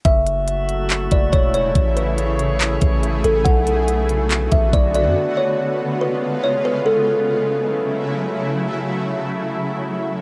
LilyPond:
<<
  \new Staff \with { instrumentName = "Kalimba" } { \time 4/4 \key fis \minor \tempo 4 = 141 e''2~ e''8 d''8 cis''8 cis''8 | r8 b'2. a'8 | fis''2~ fis''8 e''8 d''8 d''8 | r8 cis''4. b'4 cis''8 b'8 |
a'2. r4 | r1 | }
  \new Staff \with { instrumentName = "Synth texture" } { \time 4/4 \key fis \minor << { <fis' e''>1 | <gis' cis''>1 | r1 | r1 |
r1 | r1 | } \\ { a1~ | a1 | r1 | r1 |
r1 | r1 | } >> }
  \new Staff \with { instrumentName = "Ambient pad" } { \time 4/4 \key fis \minor << { <cis a e'>1~ | <cis a e'>1 | <d b fis'>1 | <cis b eis'>1 |
<cis fis a e'>1~ | <cis fis a e'>1 | } \\ { fis1 | gis'1 | r1 | gis1 |
r1 | r1 | } >> }
  \new Staff \with { instrumentName = "808-style bass" } { \clef bass \time 4/4 \key fis \minor fis,,2~ fis,,8 fis,,8 e,,4 | a,,2~ a,,8 a,,4 a,,8 | b,,2~ b,,8 a,,8 b,,8. fis,16 | r1 |
r1 | r1 | }
  \new DrumStaff \with { instrumentName = "Drums" } \drummode { \time 4/4 <hh bd>8 hh8 hh8 hh8 <hc hh>8 <hh bd>8 <hh bd>8 hh8 | <hh bd>8 hh8 hh8 hh8 <hc hh>8 <hh bd>8 hh8 hh8 | <hh bd>8 hh8 hh8 hh8 <hc hh>8 <hh bd>8 <hh bd>8 hh8 | r4 r4 r4 r4 |
r4 r4 r4 r4 | r4 r4 r4 r4 | }
>>